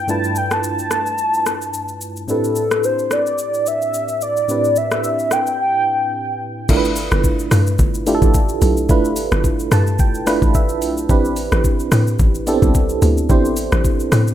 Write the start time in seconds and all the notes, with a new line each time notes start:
0.07 G2 A3 D4 E4 F4 B4 A5, shaker
0.24 shaker
0.35 G5, shaker
0.51 A5, cross-stick, shaker
0.63 shaker
0.79 shaker
0.91 cross-stick, shaker
1.06 shaker
1.18 shaker
1.34 shaker
1.46 cross-stick, shaker
1.62 shaker
1.74 shaker
1.88 shaker
2.01 shaker
2.16 shaker
2.28 A2 C4 D4 E4 G4 A4 B4, shaker
2.44 shaker
2.56 shaker
2.71 cross-stick, shaker
2.84 C5, shaker
2.99 shaker
3.11 D5, cross-stick, shaker
3.26 shaker
3.38 shaker
3.54 shaker
3.66 E5, shaker
3.82 shaker
3.94 shaker
4.08 shaker
4.21 D5, shaker
4.37 shaker
4.48 A2 C4 D4 E4 G4 B4, shaker
4.64 shaker
4.76 E5, shaker
4.91 cross-stick, shaker
5.04 shaker
5.19 shaker
5.31 G5, cross-stick, shaker
5.47 shaker
5.60 G5
6.69 G1 A3 D4 E4 F4 A#4, kick, crash, shaker
6.77 B4
6.85 shaker
6.96 open hi-hat, shaker
7.11 G1, cross-stick, shaker
7.24 kick, shaker
7.39 shaker
7.51 G2, cross-stick, open hi-hat, shaker
7.67 shaker
7.79 G1, kick, shaker
7.94 shaker
8.07 A3 D4 E4 F4 G4, open hi-hat, shaker
8.15 A4
8.22 A1, kick, shaker
8.34 kick, shaker
8.49 shaker
8.62 B1, open hi-hat, shaker
8.77 shaker
8.89 G1 A3 D4 E4 F4 B4, kick, shaker
9.05 shaker
9.16 open hi-hat, shaker
9.32 G1, cross-stick, shaker
9.44 kick, shaker
9.59 shaker
9.72 G2 A5, cross-stick, open hi-hat, shaker
9.87 shaker
9.99 G1 G5, kick, shaker
10.15 shaker
10.27 A3 D4 E4 F4 B4, cross-stick, open hi-hat, shaker
10.42 A1, kick, shaker
10.54 E5, kick, shaker
10.69 shaker
10.82 B1, open hi-hat, shaker
10.97 shaker
11.09 A1 C4 D4 E4 G4 B4, kick, shaker
11.25 shaker
11.36 open hi-hat, shaker
11.52 A1, cross-stick, shaker
11.64 kick, shaker
11.80 shaker
11.92 A2, cross-stick, open hi-hat, shaker
12.07 shaker
12.19 A1, kick, shaker
12.35 shaker
12.47 B3 D4 E4 G4 A4, open hi-hat, shaker
12.53 C4
12.62 C2, kick, shaker
12.75 kick, shaker
12.89 shaker
13.02 D2, open hi-hat, shaker
13.17 shaker
13.29 A1 C4 D4 E4 G4 C5, kick, shaker
13.45 shaker
13.57 open hi-hat, shaker
13.72 A1, cross-stick, shaker
13.85 kick, shaker
14.00 shaker
14.12 A2, cross-stick, open hi-hat, shaker
14.27 shaker